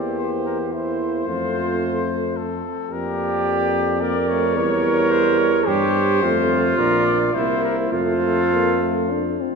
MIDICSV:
0, 0, Header, 1, 6, 480
1, 0, Start_track
1, 0, Key_signature, -1, "major"
1, 0, Tempo, 549451
1, 1114, Time_signature, 3, 2, 24, 8
1, 5923, Tempo, 569801
1, 6883, Tempo, 591716
1, 8208, End_track
2, 0, Start_track
2, 0, Title_t, "Trumpet"
2, 0, Program_c, 0, 56
2, 0, Note_on_c, 0, 74, 62
2, 156, Note_off_c, 0, 74, 0
2, 162, Note_on_c, 0, 72, 72
2, 268, Note_off_c, 0, 72, 0
2, 398, Note_on_c, 0, 70, 61
2, 506, Note_off_c, 0, 70, 0
2, 640, Note_on_c, 0, 72, 83
2, 2067, Note_on_c, 0, 69, 78
2, 2080, Note_off_c, 0, 72, 0
2, 2551, Note_on_c, 0, 70, 86
2, 2564, Note_off_c, 0, 69, 0
2, 3269, Note_off_c, 0, 70, 0
2, 3506, Note_on_c, 0, 74, 92
2, 3750, Note_on_c, 0, 73, 99
2, 3763, Note_off_c, 0, 74, 0
2, 4467, Note_on_c, 0, 72, 103
2, 4480, Note_off_c, 0, 73, 0
2, 4706, Note_off_c, 0, 72, 0
2, 4711, Note_on_c, 0, 73, 89
2, 4951, Note_on_c, 0, 72, 105
2, 4964, Note_off_c, 0, 73, 0
2, 5916, Note_off_c, 0, 72, 0
2, 5921, Note_on_c, 0, 70, 92
2, 6148, Note_off_c, 0, 70, 0
2, 6153, Note_on_c, 0, 74, 94
2, 6262, Note_off_c, 0, 74, 0
2, 6394, Note_on_c, 0, 72, 96
2, 6632, Note_off_c, 0, 72, 0
2, 6644, Note_on_c, 0, 70, 81
2, 6753, Note_off_c, 0, 70, 0
2, 6886, Note_on_c, 0, 69, 88
2, 8062, Note_off_c, 0, 69, 0
2, 8208, End_track
3, 0, Start_track
3, 0, Title_t, "Trumpet"
3, 0, Program_c, 1, 56
3, 0, Note_on_c, 1, 72, 61
3, 621, Note_off_c, 1, 72, 0
3, 639, Note_on_c, 1, 72, 65
3, 1105, Note_off_c, 1, 72, 0
3, 1116, Note_on_c, 1, 72, 72
3, 2291, Note_off_c, 1, 72, 0
3, 2556, Note_on_c, 1, 74, 80
3, 3475, Note_off_c, 1, 74, 0
3, 3514, Note_on_c, 1, 74, 83
3, 3995, Note_on_c, 1, 73, 90
3, 4008, Note_off_c, 1, 74, 0
3, 4952, Note_off_c, 1, 73, 0
3, 4957, Note_on_c, 1, 73, 89
3, 5447, Note_on_c, 1, 72, 92
3, 5460, Note_off_c, 1, 73, 0
3, 5930, Note_on_c, 1, 74, 86
3, 5943, Note_off_c, 1, 72, 0
3, 6402, Note_on_c, 1, 72, 86
3, 6414, Note_off_c, 1, 74, 0
3, 6877, Note_off_c, 1, 72, 0
3, 6882, Note_on_c, 1, 72, 83
3, 8060, Note_off_c, 1, 72, 0
3, 8208, End_track
4, 0, Start_track
4, 0, Title_t, "Trombone"
4, 0, Program_c, 2, 57
4, 0, Note_on_c, 2, 67, 86
4, 634, Note_on_c, 2, 64, 84
4, 648, Note_off_c, 2, 67, 0
4, 1106, Note_on_c, 2, 65, 94
4, 1120, Note_off_c, 2, 64, 0
4, 2069, Note_off_c, 2, 65, 0
4, 2542, Note_on_c, 2, 67, 124
4, 3499, Note_on_c, 2, 70, 120
4, 3512, Note_off_c, 2, 67, 0
4, 3978, Note_off_c, 2, 70, 0
4, 3983, Note_on_c, 2, 70, 127
4, 4954, Note_on_c, 2, 67, 119
4, 4967, Note_off_c, 2, 70, 0
4, 5439, Note_off_c, 2, 67, 0
4, 5444, Note_on_c, 2, 65, 127
4, 6399, Note_on_c, 2, 64, 110
4, 6411, Note_off_c, 2, 65, 0
4, 6889, Note_on_c, 2, 65, 122
4, 6901, Note_off_c, 2, 64, 0
4, 8087, Note_off_c, 2, 65, 0
4, 8208, End_track
5, 0, Start_track
5, 0, Title_t, "French horn"
5, 0, Program_c, 3, 60
5, 0, Note_on_c, 3, 58, 62
5, 619, Note_off_c, 3, 58, 0
5, 637, Note_on_c, 3, 58, 60
5, 1115, Note_on_c, 3, 57, 77
5, 1128, Note_off_c, 3, 58, 0
5, 2314, Note_off_c, 3, 57, 0
5, 2549, Note_on_c, 3, 58, 76
5, 3472, Note_off_c, 3, 58, 0
5, 3505, Note_on_c, 3, 58, 83
5, 3613, Note_off_c, 3, 58, 0
5, 3744, Note_on_c, 3, 57, 79
5, 3987, Note_on_c, 3, 55, 88
5, 4000, Note_off_c, 3, 57, 0
5, 4948, Note_off_c, 3, 55, 0
5, 4953, Note_on_c, 3, 55, 93
5, 5444, Note_on_c, 3, 57, 93
5, 5457, Note_off_c, 3, 55, 0
5, 5920, Note_off_c, 3, 57, 0
5, 5925, Note_on_c, 3, 58, 86
5, 6387, Note_off_c, 3, 58, 0
5, 6400, Note_on_c, 3, 58, 77
5, 6889, Note_on_c, 3, 57, 81
5, 6901, Note_off_c, 3, 58, 0
5, 7317, Note_off_c, 3, 57, 0
5, 7365, Note_on_c, 3, 58, 94
5, 7607, Note_on_c, 3, 57, 81
5, 7619, Note_off_c, 3, 58, 0
5, 7848, Note_on_c, 3, 62, 98
5, 7861, Note_off_c, 3, 57, 0
5, 8089, Note_on_c, 3, 60, 77
5, 8102, Note_off_c, 3, 62, 0
5, 8208, Note_off_c, 3, 60, 0
5, 8208, End_track
6, 0, Start_track
6, 0, Title_t, "Tuba"
6, 0, Program_c, 4, 58
6, 0, Note_on_c, 4, 40, 66
6, 1086, Note_off_c, 4, 40, 0
6, 1111, Note_on_c, 4, 41, 76
6, 2288, Note_off_c, 4, 41, 0
6, 2549, Note_on_c, 4, 41, 83
6, 3984, Note_on_c, 4, 40, 95
6, 3997, Note_off_c, 4, 41, 0
6, 4949, Note_off_c, 4, 40, 0
6, 4954, Note_on_c, 4, 43, 83
6, 5439, Note_on_c, 4, 41, 93
6, 5452, Note_off_c, 4, 43, 0
6, 5920, Note_off_c, 4, 41, 0
6, 5925, Note_on_c, 4, 34, 89
6, 6387, Note_off_c, 4, 34, 0
6, 6398, Note_on_c, 4, 36, 76
6, 6875, Note_off_c, 4, 36, 0
6, 6883, Note_on_c, 4, 41, 86
6, 8060, Note_off_c, 4, 41, 0
6, 8208, End_track
0, 0, End_of_file